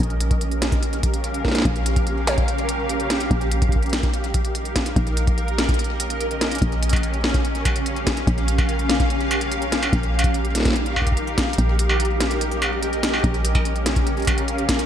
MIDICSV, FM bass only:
0, 0, Header, 1, 2, 480
1, 0, Start_track
1, 0, Time_signature, 4, 2, 24, 8
1, 0, Tempo, 413793
1, 17236, End_track
2, 0, Start_track
2, 0, Title_t, "FM bass"
2, 0, Program_c, 0, 39
2, 0, Note_on_c, 0, 34, 85
2, 1893, Note_off_c, 0, 34, 0
2, 1917, Note_on_c, 0, 34, 82
2, 3814, Note_off_c, 0, 34, 0
2, 3837, Note_on_c, 0, 34, 89
2, 5734, Note_off_c, 0, 34, 0
2, 5757, Note_on_c, 0, 34, 83
2, 7653, Note_off_c, 0, 34, 0
2, 7678, Note_on_c, 0, 34, 82
2, 9574, Note_off_c, 0, 34, 0
2, 9597, Note_on_c, 0, 34, 85
2, 11493, Note_off_c, 0, 34, 0
2, 11518, Note_on_c, 0, 34, 88
2, 13414, Note_off_c, 0, 34, 0
2, 13438, Note_on_c, 0, 34, 86
2, 15334, Note_off_c, 0, 34, 0
2, 15357, Note_on_c, 0, 34, 84
2, 17236, Note_off_c, 0, 34, 0
2, 17236, End_track
0, 0, End_of_file